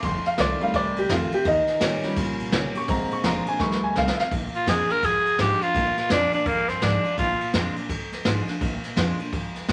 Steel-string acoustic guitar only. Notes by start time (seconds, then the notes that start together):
0.03 F2
0.38 D#3 A3 C4 F4
0.60 C4 F4
0.74 C3
1.09 D#3 A3 C4 F4
1.31 C4 F4
1.45 D#3
1.80 D#3 G3 C#4 G4
2.16 A#2
2.52 D#3 G3 C#4 G4
2.75 C#4 G4
2.89 A#2
3.24 F3 G#3 D4 F4
3.47 D4 F4
3.61 F2
3.96 D#3 A3 C4 F4
4.18 C4 F4
4.31 A#2
4.66 F3 G#3 D4 F4
4.89 D4 F4
5.02 F2
5.38 F3 G#3 D4 F4
5.61 D4 F4
5.75 A#2
6.10 F3 G#3 D4 F4
6.32 D4 F4
6.46 F2
6.82 F3 G#3 D4 F4
7.04 D4 F4
7.19 A#2
7.54 F3 G#3 D4 F4
7.76 D4 F4
7.90 F2
8.25 F3 G#3 D4 F4
8.47 D4 F4
8.61 A#2
8.96 F3 G#3 D4 F4
9.19 D4 F4
9.33 F2
9.68 F3 G#3